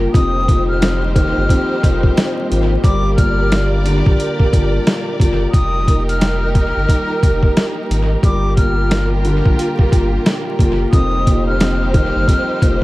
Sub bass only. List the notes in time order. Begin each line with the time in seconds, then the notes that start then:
0.15 F1
1.37 G1
1.84 F1
2.51 G#1
2.84 G1
4.07 A#1
4.53 G1
5.20 F#1
5.54 F1
6.76 G1
7.23 F1
7.90 G#1
8.24 G1
9.46 A#1
9.93 G1
10.59 F#1
10.93 F1
12.15 G1
12.62 F1